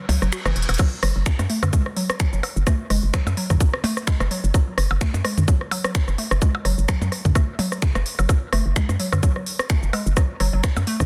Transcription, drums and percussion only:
0.09 open hi-hat, percussion blips
0.22 cross-stick, cabasa
0.33 finger snap, cabasa
0.46 cross-stick, percussion blips, cabasa
0.56 closed hi-hat
0.62 closed hi-hat
0.69 cross-stick, closed hi-hat, percussion blips
0.74 closed hi-hat
0.79 kick, cross-stick, crash, cabasa, percussion blips
1.03 cross-stick, open hi-hat
1.26 finger snap, kick, cabasa
1.39 cross-stick, percussion blips, cabasa
1.50 open hi-hat
1.63 cross-stick, high tom, cabasa, percussion blips
1.73 kick, cabasa
1.86 cross-stick
1.97 open hi-hat
2.10 cross-stick, cabasa
2.20 finger snap, kick, cabasa
2.33 cabasa
2.43 cross-stick, open hi-hat, percussion blips
2.56 cabasa
2.67 kick, cross-stick, cabasa
2.90 cross-stick, open hi-hat
3.14 finger snap, kick, cross-stick, cabasa
3.27 percussion blips, cabasa
3.37 open hi-hat
3.50 kick, cross-stick, high tom, cabasa
3.60 kick, cabasa
3.74 cross-stick
3.84 open hi-hat, percussion blips
3.97 cross-stick, cabasa
4.07 finger snap, kick, cabasa, percussion blips
4.20 cross-stick, percussion blips, cabasa
4.31 open hi-hat
4.44 cabasa
4.54 kick, cross-stick, cabasa
4.78 cross-stick, open hi-hat
4.91 percussion blips
5.01 finger snap, kick, cross-stick, cabasa
5.14 percussion blips, cabasa
5.25 cross-stick, open hi-hat
5.38 high tom, cabasa
5.48 kick, cabasa
5.61 cross-stick
5.71 open hi-hat, percussion blips
5.84 cross-stick, cabasa
5.95 finger snap, kick, cabasa
6.08 cross-stick, cabasa
6.18 open hi-hat
6.31 cross-stick, cabasa
6.42 kick, cabasa
6.55 percussion blips
6.65 cross-stick, open hi-hat
6.78 cabasa
6.88 finger snap, kick, cross-stick, cabasa
7.02 percussion blips, cabasa
7.12 cross-stick, open hi-hat
7.25 kick, high tom, cabasa
7.35 kick, cross-stick, cabasa, percussion blips
7.59 open hi-hat, percussion blips
7.72 cross-stick, cabasa
7.82 finger snap, kick, cabasa
7.95 cross-stick, percussion blips, cabasa
8.06 open hi-hat
8.19 cross-stick, cabasa, percussion blips
8.29 kick, cross-stick, cabasa, percussion blips
8.53 cross-stick, open hi-hat
8.76 finger snap, kick, cabasa
8.89 cross-stick, percussion blips, cabasa
9.00 open hi-hat
9.13 cross-stick, high tom, cabasa, percussion blips
9.23 kick, cabasa
9.36 cross-stick
9.46 open hi-hat
9.59 cross-stick, cabasa
9.70 finger snap, kick, cabasa
9.83 cabasa
9.93 cross-stick, open hi-hat, percussion blips
10.06 cabasa
10.17 kick, cross-stick, cabasa
10.40 cross-stick, open hi-hat
10.63 finger snap, kick, cross-stick, cabasa
10.77 percussion blips, cabasa
10.87 open hi-hat
11.00 kick, cross-stick, high tom, cabasa

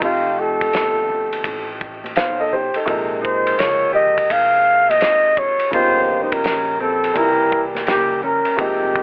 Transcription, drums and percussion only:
0.02 kick, ride, shaker
0.25 shaker
0.37 shaker
0.61 kick, ride, shaker
0.73 snare, hi-hat pedal, ride, shaker
0.97 shaker
1.09 low conga, shaker
1.32 ride, shaker
1.44 kick, ride, high conga, low conga, shaker
1.68 shaker
1.81 kick, shaker
2.04 ride, high conga, shaker
2.16 snare, hi-hat pedal, ride, shaker
2.40 shaker
2.52 low conga, shaker
2.74 ride, shaker
2.88 kick, ride, shaker
3.11 shaker
3.24 kick, shaker
3.46 ride, shaker
3.58 snare, hi-hat pedal, ride, shaker
3.83 shaker
3.95 low conga, shaker
4.18 kick, ride, shaker
4.30 kick, ride, high conga, low conga, shaker
4.53 shaker
4.67 shaker
4.90 ride, high conga, shaker
5.01 snare, hi-hat pedal, ride
5.25 shaker
5.37 kick, low conga, shaker
5.60 ride, shaker
5.73 kick, ride, shaker
5.96 shaker
6.09 shaker
6.32 kick, ride, shaker
6.44 snare, hi-hat pedal, ride
6.68 shaker
6.80 low conga, shaker
7.03 ride, shaker
7.16 kick, ride, high conga, low conga, shaker
7.39 shaker
7.52 kick, shaker
7.75 snare, ride, high conga, shaker
7.87 snare, hi-hat pedal, ride
8.11 shaker
8.23 low conga, shaker
8.45 ride, shaker
8.59 kick, ride, shaker
8.82 shaker
8.95 kick, shaker

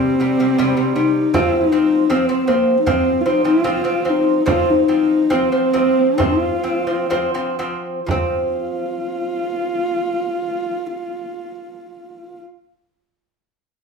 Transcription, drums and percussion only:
0.59 frame drum
0.97 frame drum
1.34 frame drum
1.73 frame drum
2.11 frame drum
2.49 frame drum
2.87 frame drum
3.66 frame drum
4.06 frame drum
4.48 frame drum
4.89 frame drum
5.32 frame drum
5.76 frame drum
6.20 frame drum
6.65 frame drum
7.12 frame drum
7.60 frame drum
8.08 frame drum

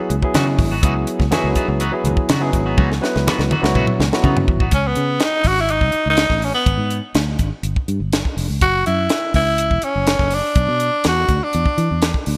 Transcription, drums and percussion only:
0.10 closed hi-hat
0.22 kick
0.34 snare, closed hi-hat, high conga
0.58 kick, open hi-hat, low conga
0.83 kick, closed hi-hat
1.07 closed hi-hat
1.20 kick, snare
1.32 snare, closed hi-hat, high conga
1.55 kick, closed hi-hat
1.80 closed hi-hat
2.05 closed hi-hat, muted conga, high conga
2.17 kick
2.29 snare, closed hi-hat, high conga
2.53 kick, closed hi-hat
2.78 kick, high tom, muted conga
2.92 snare
3.04 snare
3.16 snare
3.27 snare, high conga
3.40 snare
3.51 mid tom, muted conga, high conga
3.64 snare
3.75 kick, mid tom, muted conga
3.87 mid tom
4.00 snare, muted conga
4.13 snare
4.24 kick, high conga
4.37 floor tom
4.48 kick, low conga
4.60 kick
4.71 kick, closed hi-hat
4.95 closed hi-hat
5.20 snare, closed hi-hat
5.44 kick, open hi-hat
5.57 snare
5.69 closed hi-hat
5.81 kick
5.92 closed hi-hat
6.17 snare, closed hi-hat
6.30 kick, snare
6.42 open hi-hat
6.66 kick, closed hi-hat
6.91 closed hi-hat
7.15 snare, closed hi-hat
7.39 kick, closed hi-hat
7.63 closed hi-hat
7.76 kick
7.88 closed hi-hat
8.13 snare, closed hi-hat
8.25 kick
8.38 open hi-hat
8.61 kick, closed hi-hat
8.86 closed hi-hat
9.09 snare, closed hi-hat
9.34 kick, open hi-hat
9.58 closed hi-hat
9.71 kick
9.82 closed hi-hat
10.07 snare, closed hi-hat
10.19 kick, snare
10.31 open hi-hat
10.55 kick, closed hi-hat
10.80 closed hi-hat
11.04 snare, closed hi-hat
11.28 kick, closed hi-hat
11.53 closed hi-hat
11.66 kick
11.78 closed hi-hat
12.02 snare, closed hi-hat
12.14 kick
12.26 open hi-hat

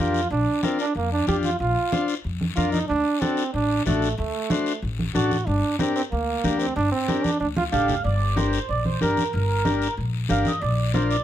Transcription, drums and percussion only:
0.14 short guiro
0.31 high conga, long guiro
0.63 high conga, short guiro
0.79 short guiro
0.95 high conga, long guiro
1.27 high conga, short guiro
1.43 high conga, short guiro
1.59 high conga, long guiro
1.92 high conga, short guiro
2.08 short guiro
2.24 high conga, long guiro
2.41 high conga
2.56 high conga, short guiro
2.72 high conga, short guiro
2.88 high conga, long guiro
3.21 high conga, short guiro
3.37 short guiro
3.54 high conga, long guiro
3.86 high conga, short guiro
4.02 short guiro
4.18 high conga, long guiro
4.50 high conga, short guiro
4.66 short guiro
4.82 high conga, long guiro
4.99 high conga
5.15 high conga, short guiro
5.31 high conga, short guiro
5.47 high conga, long guiro
5.79 high conga, short guiro
5.96 short guiro
6.12 high conga, long guiro
6.44 high conga, short guiro
6.59 short guiro
6.76 high conga, long guiro
7.08 high conga, short guiro
7.24 high conga, short guiro
7.40 long guiro
7.56 high conga
7.72 low conga, short guiro
7.88 low conga, short guiro
8.04 high conga, long guiro
8.37 high conga, short guiro
8.53 short guiro
8.69 high conga, long guiro
8.85 high conga
9.01 high conga, short guiro
9.17 high conga, short guiro
9.33 high conga, long guiro
9.65 high conga, short guiro
9.82 short guiro
9.97 high conga, long guiro
10.29 high conga, short guiro
10.45 high conga, short guiro
10.62 high conga, long guiro
10.94 high conga, short guiro
11.11 short guiro

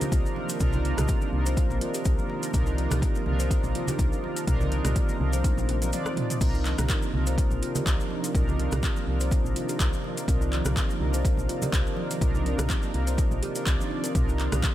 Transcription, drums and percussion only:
0.01 closed hi-hat, high conga, low conga, maracas
0.12 kick, closed hi-hat, maracas
0.26 maracas
0.36 muted conga, high conga
0.49 closed hi-hat, maracas
0.60 kick, closed hi-hat, mid tom, muted conga, maracas
0.73 high conga, low conga, maracas
0.85 closed hi-hat, muted conga
0.98 cross-stick, closed hi-hat, mid tom, high conga, low conga, maracas
1.08 kick, closed hi-hat, maracas
1.22 muted conga, maracas
1.46 closed hi-hat, muted conga, maracas
1.57 kick, closed hi-hat, maracas
1.70 muted conga, maracas
1.81 closed hi-hat
1.94 closed hi-hat, maracas
2.05 kick, closed hi-hat, maracas
2.18 high conga, maracas
2.29 muted conga
2.43 closed hi-hat, maracas
2.54 kick, closed hi-hat, mid tom, muted conga, maracas
2.66 maracas
2.78 closed hi-hat, muted conga
2.90 cross-stick, closed hi-hat, mid tom, high conga, low conga, maracas
3.02 kick, closed hi-hat, maracas
3.15 muted conga, maracas
3.26 low conga
3.40 closed hi-hat, muted conga, maracas
3.51 kick, closed hi-hat, maracas
3.64 muted conga, maracas
3.75 closed hi-hat
3.88 closed hi-hat, high conga, low conga, maracas
3.99 kick, closed hi-hat, muted conga, maracas
4.13 maracas
4.24 muted conga, high conga
4.36 closed hi-hat, maracas
4.47 kick, closed hi-hat, mid tom, muted conga, maracas
4.61 high conga, low conga, maracas
4.72 closed hi-hat, muted conga
4.85 cross-stick, closed hi-hat, mid tom, high conga, low conga, maracas
4.96 kick, closed hi-hat, maracas
5.09 muted conga, maracas
5.21 low conga
5.33 closed hi-hat, muted conga, maracas
5.44 kick, closed hi-hat, high tom, maracas
5.57 high tom, muted conga, maracas
5.69 closed hi-hat, high tom
5.82 closed hi-hat, mid tom, maracas
5.93 closed hi-hat, mid tom, muted conga, maracas
6.05 cross-stick, high conga, maracas
6.16 closed hi-hat, mid tom, muted conga
6.30 closed hi-hat, mid tom, maracas
6.41 kick, closed hi-hat, mid tom, crash, muted conga, maracas
6.54 maracas
6.65 clap, closed hi-hat, muted conga
6.78 cross-stick, closed hi-hat, mid tom, high conga, low conga, maracas
6.89 kick, clap, closed hi-hat, maracas
7.02 muted conga, maracas
7.14 low conga
7.26 closed hi-hat, muted conga, maracas
7.38 kick, closed hi-hat, maracas
7.51 muted conga, maracas
7.63 closed hi-hat
7.75 closed hi-hat, high conga, low conga, maracas
7.86 kick, clap, closed hi-hat, muted conga, maracas
8.00 maracas
8.10 muted conga, high conga
8.24 closed hi-hat, maracas
8.35 kick, closed hi-hat, mid tom, muted conga, maracas
8.48 high conga, low conga, maracas
8.59 closed hi-hat, muted conga
8.72 cross-stick, closed hi-hat, mid tom, high conga, low conga, maracas
8.83 kick, clap, closed hi-hat, maracas
8.96 muted conga, maracas
9.20 closed hi-hat, muted conga, maracas
9.31 kick, closed hi-hat, maracas
9.45 muted conga, maracas
9.56 closed hi-hat
9.69 closed hi-hat, maracas
9.80 kick, clap, closed hi-hat, maracas
9.93 high conga, maracas
10.04 muted conga
10.17 closed hi-hat, maracas
10.28 kick, closed hi-hat, mid tom, muted conga, maracas
10.42 maracas
10.52 clap, closed hi-hat, muted conga
10.65 cross-stick, closed hi-hat, mid tom, high conga, low conga, maracas
10.76 kick, clap, closed hi-hat, maracas
10.89 muted conga, maracas
11.02 low conga
11.14 closed hi-hat, muted conga, maracas
11.25 kick, closed hi-hat, maracas
11.37 muted conga, maracas
11.49 closed hi-hat
11.62 closed hi-hat, high conga, low conga, maracas
11.73 kick, clap, closed hi-hat, muted conga, maracas
11.87 maracas
11.96 muted conga, high conga
12.11 closed hi-hat, maracas
12.21 kick, closed hi-hat, mid tom, muted conga, maracas
12.34 high conga, low conga, maracas
12.46 closed hi-hat, muted conga
12.59 cross-stick, closed hi-hat, mid tom, high conga, low conga, maracas
12.70 kick, clap, closed hi-hat, maracas
12.83 muted conga, maracas
12.94 closed hi-hat
13.07 closed hi-hat, muted conga, maracas
13.18 kick, closed hi-hat, maracas
13.31 muted conga, maracas
13.43 closed hi-hat
13.55 closed hi-hat, maracas
13.67 kick, clap, closed hi-hat, muted conga, maracas
13.80 high conga, maracas
13.91 muted conga
14.04 closed hi-hat, maracas
14.15 kick, closed hi-hat, mid tom, muted conga, maracas
14.29 maracas
14.39 clap, closed hi-hat, muted conga
14.52 cross-stick, closed hi-hat, mid tom, high conga, low conga, maracas
14.63 kick, clap, closed hi-hat, maracas

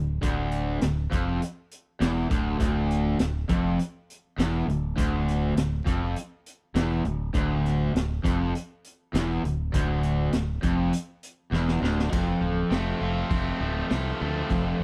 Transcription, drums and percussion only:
0.23 kick, closed hi-hat
0.51 closed hi-hat
0.81 snare, closed hi-hat
1.12 kick, closed hi-hat
1.42 closed hi-hat
1.71 closed hi-hat
2.01 snare, closed hi-hat
2.31 kick, closed hi-hat
2.60 kick, closed hi-hat
2.91 closed hi-hat
3.19 snare, closed hi-hat
3.49 kick, closed hi-hat
3.79 closed hi-hat
4.10 closed hi-hat
4.39 snare, closed hi-hat
4.69 closed hi-hat
4.98 kick, closed hi-hat
5.28 snare, closed hi-hat
5.57 snare, closed hi-hat
5.87 kick, closed hi-hat
6.16 closed hi-hat
6.46 closed hi-hat
6.75 snare, closed hi-hat
7.05 closed hi-hat
7.34 kick, closed hi-hat
7.66 snare, closed hi-hat
7.96 snare, closed hi-hat
8.25 kick, closed hi-hat
8.55 closed hi-hat
8.84 closed hi-hat
9.15 snare, closed hi-hat
9.45 closed hi-hat
9.74 kick, closed hi-hat
10.03 closed hi-hat
10.33 snare, closed hi-hat
10.63 kick, closed hi-hat
10.93 closed hi-hat
11.23 closed hi-hat
11.53 snare
11.68 snare
11.84 snare
11.99 snare
12.13 kick, crash
12.71 snare, open hi-hat
13.30 kick, open hi-hat
13.90 snare, open hi-hat
14.49 kick, open hi-hat

